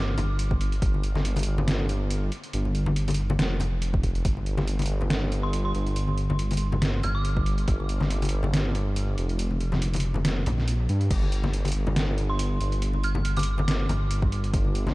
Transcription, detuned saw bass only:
Already playing: G1
0.18 G1
0.82 G1
1.46 G1
2.54 G1
3.39 F1
4.25 G1
4.89 G1
5.75 G1
7.04 G1
7.68 G1
8.32 G1
9.18 F1
10.46 A#1
10.89 G2
11.11 G1
11.75 G1
12.61 G1
13.89 G1
14.54 G1

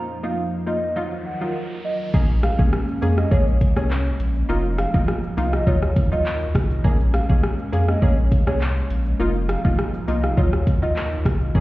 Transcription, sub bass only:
2.14 A#1
2.59 A#1
3.02 F2
3.32 A#1
3.76 C2
4.20 A#1
4.49 F1
4.94 F1
5.37 C2
5.67 D#2
6.12 D#2
6.55 C2
6.85 A#1
7.30 A#1
7.73 F2
8.02 A#1
8.47 C2
8.90 A#1
9.20 F1
9.65 F1
10.08 C2
10.37 D#2
10.82 D#2
11.25 C2
11.55 A#1

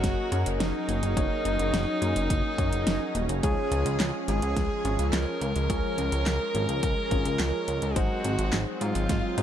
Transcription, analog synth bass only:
0.04 F#1
0.32 F#2
0.46 F#1
0.60 F#1
0.89 F#1
1.03 F#1
1.17 F#1
1.45 F#1
1.59 F#1
1.73 F#1
2.02 F#2
2.16 F#1
2.30 F#1
2.58 F#2
2.72 F#1
2.87 F#1
3.15 D#1
3.29 F#1
3.43 C#2
3.71 C#2
3.86 C#2
4.00 C#2
4.28 G#1
4.42 C#2
4.57 C#2
4.85 G#1
4.99 C#2
5.13 C#2
5.41 C#2
5.56 C#2
5.70 C#2
5.98 C#2
6.12 C#2
6.26 C#2
6.55 G#1
6.69 C#2
6.83 C#2
7.11 G#1
7.25 C#2
7.40 C#2
7.68 C#2
7.82 C#2
7.96 G#1
8.25 G#1
8.39 G#1
8.53 G#1
8.81 G#2
8.95 G#1
9.09 G#1
9.38 G#2

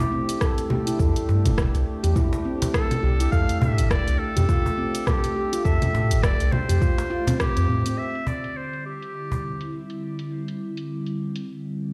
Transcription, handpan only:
Already playing: E4
0.12 C4
0.41 A4
0.70 G4
0.87 E4
0.99 A4
2.03 G4
2.16 E4
2.45 C4
2.74 A4
3.03 G4
3.20 E4
3.32 A4
4.36 G4
4.49 F4
4.78 C4
5.07 A4
5.36 G4
5.53 F4
5.65 A4
6.69 G4
6.81 F4
7.10 F4
7.27 C4
7.40 C4
7.56 C4
7.69 C4
7.86 C4

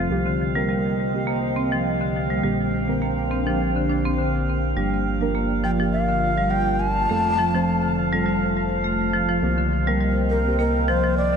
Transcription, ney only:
5.64 G5
5.93 F5
6.50 G5
6.80 A5
10.30 A#4
10.59 A#4
10.88 C5
11.17 D5

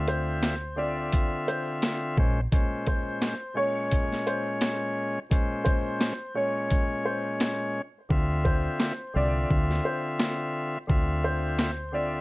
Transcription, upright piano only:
0.08 C5
0.78 D5
1.48 C5
2.87 C5
3.57 C#5
4.27 C5
5.64 C5
6.35 C#5
7.05 C5
8.45 C5
9.17 D5
9.85 C5
11.24 C5
11.94 D5

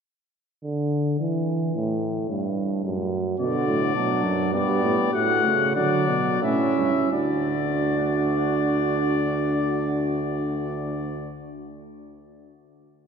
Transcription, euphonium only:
0.64 D3
1.20 E3
1.75 A2
2.30 G2
2.85 F#2
3.39 B2
3.67 A2
3.95 B2
4.24 F#2
4.53 G2
4.83 A2
5.13 A2
5.44 C#3
5.75 D3
6.08 B2
6.42 A2
6.77 G2
7.13 D2

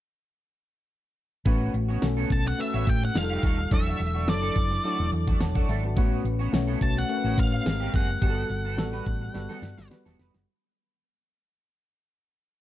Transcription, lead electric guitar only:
2.32 A5
2.48 F#5
2.60 E5
2.89 G5
3.05 F#5
3.17 F5
3.74 E5
4.29 D5
6.82 A5
6.98 F#5
7.40 F5
7.96 F#5

